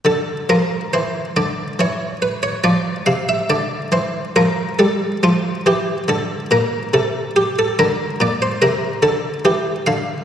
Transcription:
<<
  \new Staff \with { instrumentName = "Harpsichord" } { \time 3/4 \key d \minor \tempo 4 = 70 a'8 bes'8 c''8 d''8 cis''8 b'16 cis''16 | d''8 f''16 e''16 d''8 c''8 bes'8 a'8 | f'8 g'8 a'8 bes'8 a'8 g'16 a'16 | bes'8 d''16 c''16 bes'8 a'8 g'8 f''8 | }
  \new Staff \with { instrumentName = "Harpsichord" } { \clef bass \time 3/4 \key d \minor d8 f8 e8 d8 e4 | f8 c8 d8 e8 f8 g8 | f8 e8 d8 bes,8 c4 | d8 bes,8 c8 d8 e8 d8 | }
>>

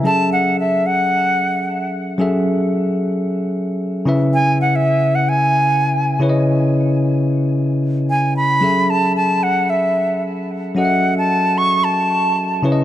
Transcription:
<<
  \new Staff \with { instrumentName = "Flute" } { \time 4/4 \key fis \dorian \tempo 4 = 112 a''8 fis''8 e''8 fis''2 r8 | r1 | gis''8 fis''16 e''8. fis''16 gis''4.~ gis''16 r8 | r2. gis''8 b''8~ |
b''8 a''8 a''8 fis''8 e''4 r4 | fis''8. a''8. cis'''8 a''4. r8 | }
  \new Staff \with { instrumentName = "Tine electric piano" } { \time 4/4 \key fis \dorian <fis cis' gis' a' e''>1 | <fis cis' gis' a' e''>2.~ <fis cis' gis' a' e''>8 <cis cis' e' b' e''>8~ | <cis cis' e' b' e''>2.~ <cis cis' e' b' e''>8 <cis cis' e' b' cis'' dis''>8~ | <cis cis' e' b' cis'' dis''>2.~ <cis cis' e' b' cis'' dis''>8 r8 |
<fis cis' gis' a' e''>1 | <fis cis' fis' a' dis'' e''>2.~ <fis cis' fis' a' dis'' e''>8 <cis cis' e' b' cis'' dis''>8 | }
>>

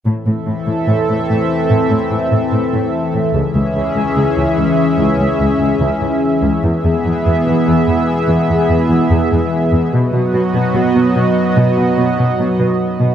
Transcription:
<<
  \new Staff \with { instrumentName = "Analog synth pad" } { \time 4/4 \key e \phrygian \tempo 4 = 73 <e c' a' e''>1 | <e cis' gis' e''>1 | <e b gis' e''>1 | <fis b fis' dis''>1 | }
  \new Staff \with { instrumentName = "Cello section" } { \clef bass \time 4/4 \key e \phrygian a,16 a,16 a,16 a,16 a,16 a,16 a,16 r16 a,16 a,16 a,16 a,16 a,16 a,16 r16 a,16 | cis,16 cis,16 cis,16 cis,16 cis,16 cis,16 cis,16 r16 cis,16 cis,16 cis,16 cis,16 cis,16 cis,16 r16 cis,16 | e,16 e,16 e,16 e,16 e,16 e,16 e,16 r16 e,16 e,16 e,16 e,16 e,16 e,16 r16 e,16 | b,16 b,16 b,16 b,16 b,16 b,16 b,16 r16 b,16 b,16 b,16 b,16 b,16 b,16 r16 b,16 | }
>>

